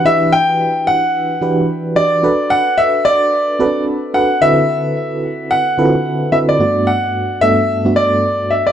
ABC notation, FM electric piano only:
X:1
M:4/4
L:1/16
Q:"Swing 16ths" 1/4=110
K:G
V:1 name="FM electric piano"
[E,DEGB]6- [E,DEGB] z3 [E,DFGB]4 [E,DFGd]2 | [DFAB]6- [DFAB] z3 [CDFAB]4 [DFAB]2 | [D,CEFAB]6- [D,CEFAB] z3 [D,CE=F^FAB]4 [D,CEFAB]2 | [G,,A,B,DF]4- [G,,A,B,DF] z [G,,A,B,DA]3 [G,,A,B,DF]6 z |]